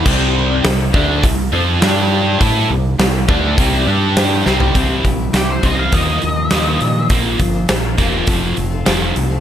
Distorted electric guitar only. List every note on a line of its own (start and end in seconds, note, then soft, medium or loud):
0.05 0.63 C3 loud
0.05 0.64 G3 loud
0.05 0.64 C4 loud
0.64 0.88 C3 medium
0.64 0.88 G3 medium
0.93 1.22 D3 medium
0.93 1.22 A3 medium
0.93 1.23 D4 medium
1.23 1.47 C3 medium
1.23 1.47 G3 medium
1.52 1.81 F3 medium
1.52 1.81 C4 loud
1.52 1.81 F4 loud
1.81 2.39 G3 medium
1.81 2.40 D4 loud
1.81 2.40 G4 loud
2.40 2.68 A3 medium
2.40 2.69 E4 loud
2.40 2.69 A4 loud
2.69 2.93 C3 medium
2.69 2.93 G3 medium
2.99 3.22 C3 medium
2.99 3.23 G3 medium
3.28 3.57 D3 medium
3.28 3.57 A3 medium
3.28 3.58 D4 medium
3.57 3.86 C3 medium
3.57 3.85 G3 medium
3.57 3.87 C4 loud
3.87 4.44 G3 medium
3.87 4.45 D4 medium
3.87 4.45 G4 loud
4.45 4.73 C3 medium
4.45 4.74 G3 medium
4.45 4.75 C4 medium
4.74 5.02 C3 medium
4.74 5.03 G3 medium
4.74 5.03 C4 medium
5.04 5.31 C3 medium
5.04 5.31 G3 medium
5.34 5.60 C3 medium
5.34 5.61 G3 medium
5.63 5.91 C3 medium
5.63 5.91 G3 medium
5.63 5.92 C4 medium
5.92 6.20 D#3 medium
5.92 6.21 F3 medium
5.92 6.21 A#3 medium
6.21 6.48 D#3 medium
6.21 6.48 F3 medium
6.51 6.79 D#3 medium
6.51 6.79 F3 medium
6.51 6.80 A#3 medium
6.82 7.08 D#3 medium
6.82 7.08 F3 medium
7.10 7.38 A#2 medium
7.10 7.38 F3 medium
7.10 7.39 A#3 medium
7.39 7.66 A#2 medium
7.39 7.66 F3 medium
7.69 7.96 A#2 medium
7.69 7.96 F3 medium
7.98 8.26 A#2 medium
7.98 8.26 F3 medium
7.98 8.27 A#3 medium
8.27 8.55 F2 medium
8.27 8.56 C3 medium
8.27 8.56 F3 medium
8.57 8.84 F2 medium
8.57 8.84 C3 medium
8.86 9.14 F2 medium
8.86 9.14 C3 medium
8.86 9.15 F3 medium
9.16 9.40 F2 medium
9.16 9.40 C3 medium